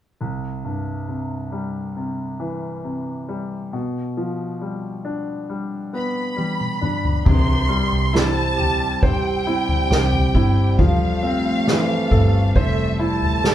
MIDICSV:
0, 0, Header, 1, 7, 480
1, 0, Start_track
1, 0, Key_signature, 0, "major"
1, 0, Tempo, 882353
1, 112, Time_signature, 4, 2, 24, 8
1, 3952, Key_signature, 0, "major"
1, 7370, End_track
2, 0, Start_track
2, 0, Title_t, "Violin section"
2, 0, Program_c, 0, 48
2, 3236, Note_on_c, 0, 83, 68
2, 3932, Note_off_c, 0, 83, 0
2, 3956, Note_on_c, 0, 84, 88
2, 4434, Note_off_c, 0, 84, 0
2, 4435, Note_on_c, 0, 81, 98
2, 4913, Note_off_c, 0, 81, 0
2, 4913, Note_on_c, 0, 79, 93
2, 5872, Note_off_c, 0, 79, 0
2, 5876, Note_on_c, 0, 77, 88
2, 6812, Note_off_c, 0, 77, 0
2, 6836, Note_on_c, 0, 76, 80
2, 7073, Note_off_c, 0, 76, 0
2, 7080, Note_on_c, 0, 81, 95
2, 7370, Note_off_c, 0, 81, 0
2, 7370, End_track
3, 0, Start_track
3, 0, Title_t, "Steel-string acoustic guitar"
3, 0, Program_c, 1, 25
3, 3950, Note_on_c, 1, 48, 69
3, 3952, Note_on_c, 1, 67, 64
3, 4191, Note_on_c, 1, 64, 51
3, 4433, Note_on_c, 1, 60, 54
3, 4664, Note_off_c, 1, 67, 0
3, 4671, Note_on_c, 1, 67, 57
3, 4909, Note_off_c, 1, 64, 0
3, 4911, Note_on_c, 1, 64, 51
3, 5150, Note_off_c, 1, 60, 0
3, 5153, Note_on_c, 1, 60, 51
3, 5386, Note_off_c, 1, 67, 0
3, 5392, Note_on_c, 1, 67, 60
3, 5630, Note_off_c, 1, 60, 0
3, 5632, Note_on_c, 1, 60, 50
3, 5870, Note_on_c, 1, 53, 69
3, 5871, Note_off_c, 1, 48, 0
3, 5872, Note_off_c, 1, 67, 0
3, 5874, Note_on_c, 1, 69, 56
3, 6348, Note_off_c, 1, 60, 0
3, 6351, Note_on_c, 1, 60, 53
3, 6583, Note_off_c, 1, 69, 0
3, 6590, Note_on_c, 1, 69, 59
3, 6815, Note_off_c, 1, 64, 0
3, 6829, Note_on_c, 1, 64, 57
3, 7067, Note_off_c, 1, 60, 0
3, 7069, Note_on_c, 1, 60, 49
3, 7303, Note_off_c, 1, 69, 0
3, 7310, Note_on_c, 1, 69, 58
3, 7370, Note_off_c, 1, 53, 0
3, 7370, Note_off_c, 1, 60, 0
3, 7370, Note_off_c, 1, 64, 0
3, 7370, Note_off_c, 1, 69, 0
3, 7370, End_track
4, 0, Start_track
4, 0, Title_t, "Analog synth pad"
4, 0, Program_c, 2, 89
4, 3952, Note_on_c, 2, 60, 64
4, 3952, Note_on_c, 2, 67, 75
4, 3954, Note_on_c, 2, 55, 70
4, 5852, Note_off_c, 2, 67, 0
4, 5853, Note_off_c, 2, 60, 0
4, 5873, Note_on_c, 2, 69, 84
4, 5874, Note_on_c, 2, 57, 67
4, 7370, Note_off_c, 2, 55, 0
4, 7370, Note_off_c, 2, 57, 0
4, 7370, Note_off_c, 2, 69, 0
4, 7370, End_track
5, 0, Start_track
5, 0, Title_t, "Grand piano"
5, 0, Program_c, 3, 0
5, 113, Note_on_c, 3, 36, 39
5, 226, Control_c, 3, 64, 127
5, 350, Note_on_c, 3, 43, 32
5, 589, Note_on_c, 3, 48, 33
5, 827, Note_on_c, 3, 55, 33
5, 1062, Note_off_c, 3, 48, 0
5, 1070, Note_on_c, 3, 48, 35
5, 1289, Note_off_c, 3, 43, 0
5, 1304, Note_on_c, 3, 52, 36
5, 1539, Note_off_c, 3, 48, 0
5, 1547, Note_on_c, 3, 48, 34
5, 1768, Note_off_c, 3, 55, 0
5, 1788, Note_on_c, 3, 55, 40
5, 2006, Note_off_c, 3, 52, 0
5, 2010, Note_off_c, 3, 36, 0
5, 2015, Note_off_c, 3, 48, 0
5, 2022, Note_off_c, 3, 55, 0
5, 2029, Note_on_c, 3, 47, 39
5, 2039, Control_c, 3, 64, 0
5, 2149, Control_c, 3, 64, 127
5, 2270, Note_on_c, 3, 53, 37
5, 2510, Note_on_c, 3, 55, 32
5, 2746, Note_on_c, 3, 62, 39
5, 2981, Note_off_c, 3, 55, 0
5, 2989, Note_on_c, 3, 55, 36
5, 3209, Note_off_c, 3, 53, 0
5, 3228, Note_on_c, 3, 59, 38
5, 3455, Note_off_c, 3, 55, 0
5, 3463, Note_on_c, 3, 55, 37
5, 3687, Note_off_c, 3, 62, 0
5, 3707, Note_on_c, 3, 62, 40
5, 3928, Note_off_c, 3, 47, 0
5, 3928, Note_off_c, 3, 59, 0
5, 3933, Note_off_c, 3, 55, 0
5, 3942, Note_off_c, 3, 62, 0
5, 3945, Note_on_c, 3, 48, 56
5, 3959, Control_c, 3, 64, 0
5, 4062, Control_c, 3, 64, 127
5, 4182, Note_on_c, 3, 55, 47
5, 4425, Note_on_c, 3, 64, 48
5, 4666, Note_on_c, 3, 67, 44
5, 4911, Note_on_c, 3, 72, 53
5, 5125, Note_off_c, 3, 55, 0
5, 5143, Note_off_c, 3, 64, 0
5, 5151, Note_on_c, 3, 64, 49
5, 5381, Note_off_c, 3, 67, 0
5, 5389, Note_on_c, 3, 67, 49
5, 5625, Note_off_c, 3, 64, 0
5, 5633, Note_on_c, 3, 64, 51
5, 5846, Note_off_c, 3, 48, 0
5, 5849, Note_off_c, 3, 72, 0
5, 5856, Note_off_c, 3, 67, 0
5, 5865, Note_off_c, 3, 64, 0
5, 5871, Note_on_c, 3, 53, 56
5, 5879, Control_c, 3, 64, 0
5, 5973, Control_c, 3, 64, 127
5, 6108, Note_on_c, 3, 60, 48
5, 6353, Note_on_c, 3, 52, 48
5, 6590, Note_on_c, 3, 69, 50
5, 6832, Note_on_c, 3, 72, 54
5, 7048, Note_off_c, 3, 60, 0
5, 7069, Note_on_c, 3, 64, 51
5, 7291, Note_off_c, 3, 52, 0
5, 7304, Note_off_c, 3, 69, 0
5, 7312, Note_on_c, 3, 69, 50
5, 7370, Note_off_c, 3, 53, 0
5, 7370, Note_off_c, 3, 64, 0
5, 7370, Note_off_c, 3, 69, 0
5, 7370, Note_off_c, 3, 72, 0
5, 7370, End_track
6, 0, Start_track
6, 0, Title_t, "Fingered electric bass"
6, 0, Program_c, 4, 33
6, 3952, Note_on_c, 4, 36, 85
6, 4290, Note_off_c, 4, 36, 0
6, 4311, Note_on_c, 4, 36, 72
6, 5369, Note_off_c, 4, 36, 0
6, 5389, Note_on_c, 4, 36, 88
6, 5614, Note_off_c, 4, 36, 0
6, 5628, Note_on_c, 4, 31, 74
6, 5870, Note_off_c, 4, 31, 0
6, 5870, Note_on_c, 4, 29, 79
6, 6569, Note_off_c, 4, 29, 0
6, 6588, Note_on_c, 4, 31, 73
6, 6813, Note_off_c, 4, 31, 0
6, 6829, Note_on_c, 4, 29, 78
6, 7370, Note_off_c, 4, 29, 0
6, 7370, End_track
7, 0, Start_track
7, 0, Title_t, "Drums"
7, 3472, Note_on_c, 9, 48, 36
7, 3526, Note_off_c, 9, 48, 0
7, 3594, Note_on_c, 9, 47, 37
7, 3648, Note_off_c, 9, 47, 0
7, 3713, Note_on_c, 9, 45, 61
7, 3767, Note_off_c, 9, 45, 0
7, 3833, Note_on_c, 9, 43, 61
7, 3887, Note_off_c, 9, 43, 0
7, 3950, Note_on_c, 9, 49, 65
7, 3951, Note_on_c, 9, 36, 81
7, 3951, Note_on_c, 9, 43, 87
7, 4005, Note_off_c, 9, 43, 0
7, 4005, Note_off_c, 9, 49, 0
7, 4006, Note_off_c, 9, 36, 0
7, 4435, Note_on_c, 9, 38, 94
7, 4489, Note_off_c, 9, 38, 0
7, 4672, Note_on_c, 9, 43, 50
7, 4726, Note_off_c, 9, 43, 0
7, 4910, Note_on_c, 9, 36, 82
7, 4910, Note_on_c, 9, 43, 46
7, 4964, Note_off_c, 9, 43, 0
7, 4965, Note_off_c, 9, 36, 0
7, 5270, Note_on_c, 9, 43, 56
7, 5324, Note_off_c, 9, 43, 0
7, 5394, Note_on_c, 9, 38, 95
7, 5448, Note_off_c, 9, 38, 0
7, 5510, Note_on_c, 9, 43, 57
7, 5565, Note_off_c, 9, 43, 0
7, 5629, Note_on_c, 9, 36, 78
7, 5684, Note_off_c, 9, 36, 0
7, 5868, Note_on_c, 9, 43, 88
7, 5869, Note_on_c, 9, 36, 84
7, 5922, Note_off_c, 9, 43, 0
7, 5924, Note_off_c, 9, 36, 0
7, 6351, Note_on_c, 9, 38, 95
7, 6406, Note_off_c, 9, 38, 0
7, 6590, Note_on_c, 9, 36, 69
7, 6590, Note_on_c, 9, 43, 51
7, 6644, Note_off_c, 9, 36, 0
7, 6644, Note_off_c, 9, 43, 0
7, 6830, Note_on_c, 9, 36, 75
7, 6832, Note_on_c, 9, 43, 49
7, 6885, Note_off_c, 9, 36, 0
7, 6887, Note_off_c, 9, 43, 0
7, 7192, Note_on_c, 9, 43, 55
7, 7246, Note_off_c, 9, 43, 0
7, 7313, Note_on_c, 9, 38, 101
7, 7367, Note_off_c, 9, 38, 0
7, 7370, End_track
0, 0, End_of_file